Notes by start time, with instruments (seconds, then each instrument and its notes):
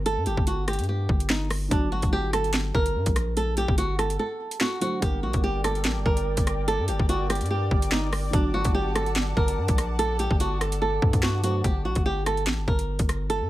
Already playing: 808-style bass G1, grand piano D3 G3 A#3 G4 A#4
0.06 nylon-string guitar A4, closed hi-hat
0.17 808-style bass G2
0.26 808-style bass G1, nylon-string guitar G4, closed hi-hat
0.37 808-style bass G1, kick
0.47 nylon-string guitar F#4, closed hi-hat
0.68 nylon-string guitar G4, cross-stick, closed hi-hat
0.73 closed hi-hat
0.79 808-style bass G2, closed hi-hat
0.84 closed hi-hat
0.89 nylon-string guitar G4
1.09 808-style bass G1, kick
1.20 closed hi-hat
1.30 nylon-string guitar D#4, snare
1.50 cross-stick, open hi-hat
1.69 808-style bass G1, grand piano D3 F#3 F#4, nylon-string guitar D4, kick, closed hi-hat
1.92 nylon-string guitar F#4
2.02 808-style bass G1, kick, closed hi-hat
2.13 nylon-string guitar G4
2.33 nylon-string guitar A4, cross-stick, closed hi-hat
2.44 closed hi-hat
2.54 snare
2.75 808-style bass G1, nylon-string guitar A#4, kick
2.86 closed hi-hat
2.95 808-style bass G2
3.06 808-style bass A#1, kick, closed hi-hat
3.16 cross-stick, closed hi-hat
3.37 nylon-string guitar A4, closed hi-hat
3.57 nylon-string guitar G4, closed hi-hat
3.68 808-style bass G1, kick
3.78 nylon-string guitar F#4, closed hi-hat
3.99 nylon-string guitar A4, cross-stick, closed hi-hat
4.10 closed hi-hat
4.19 nylon-string guitar A4
4.51 closed hi-hat
4.61 nylon-string guitar F#4, snare
4.80 grand piano D3 F#3 A3 F#4 C5, nylon-string guitar F#4, closed hi-hat
5.00 808-style bass G1, grand piano D3 G3 A#3 G4, nylon-string guitar G4, analog synth pad A#4 D5 G5 D6, kick, closed hi-hat
5.05 grand piano A#4
5.23 808-style bass A#1, nylon-string guitar F#4
5.33 808-style bass G1, kick, closed hi-hat
5.44 nylon-string guitar G4
5.64 nylon-string guitar A4, cross-stick, closed hi-hat
5.75 closed hi-hat
5.85 808-style bass A1, snare
5.96 808-style bass G1
6.06 808-style bass G1, nylon-string guitar A#4, kick
6.17 closed hi-hat
6.37 808-style bass G1, kick, closed hi-hat
6.47 cross-stick, closed hi-hat
6.68 nylon-string guitar A4, closed hi-hat
6.79 808-style bass G2
6.88 808-style bass G1, nylon-string guitar G4, closed hi-hat
6.99 808-style bass G1, kick
7.09 nylon-string guitar F#4, closed hi-hat
7.30 nylon-string guitar G4, cross-stick, closed hi-hat
7.35 closed hi-hat
7.41 808-style bass G2, closed hi-hat
7.46 closed hi-hat
7.51 nylon-string guitar G4
7.71 808-style bass G1, kick
7.82 closed hi-hat
7.92 nylon-string guitar D#4, snare
8.13 cross-stick, open hi-hat
8.31 808-style bass G1, grand piano D3 F#3 F#4, nylon-string guitar D4, analog synth pad F#5 A5, kick, closed hi-hat
8.54 nylon-string guitar F#4
8.64 808-style bass G1, kick, closed hi-hat
8.75 nylon-string guitar G4
8.95 nylon-string guitar A4, cross-stick, closed hi-hat
9.06 closed hi-hat
9.16 snare
9.37 808-style bass G1, nylon-string guitar A#4, kick
9.48 closed hi-hat
9.58 808-style bass G2
9.68 808-style bass A#1, kick, closed hi-hat
9.78 cross-stick, closed hi-hat
9.99 nylon-string guitar A4, closed hi-hat
10.19 nylon-string guitar G4, closed hi-hat
10.31 808-style bass G1, kick
10.40 nylon-string guitar F#4, closed hi-hat
10.61 nylon-string guitar A4, cross-stick, closed hi-hat
10.72 closed hi-hat
10.82 nylon-string guitar A4
11.02 808-style bass G2, kick
11.13 808-style bass G2, kick, closed hi-hat
11.23 nylon-string guitar F#4, snare
11.42 grand piano D3 F#3 A3 F#4 C5, nylon-string guitar F#4, closed hi-hat
11.64 808-style bass G1, nylon-string guitar G4, kick, closed hi-hat
11.85 808-style bass A#1, nylon-string guitar F#4
11.95 808-style bass G1, kick, closed hi-hat
12.06 nylon-string guitar G4
12.26 nylon-string guitar A4, cross-stick, closed hi-hat
12.37 closed hi-hat
12.47 808-style bass A1, snare
12.58 808-style bass G1
12.68 808-style bass G1, nylon-string guitar A#4, kick
12.79 closed hi-hat
12.99 808-style bass G1, kick, closed hi-hat
13.09 cross-stick, closed hi-hat
13.30 nylon-string guitar A4, closed hi-hat
13.41 808-style bass G2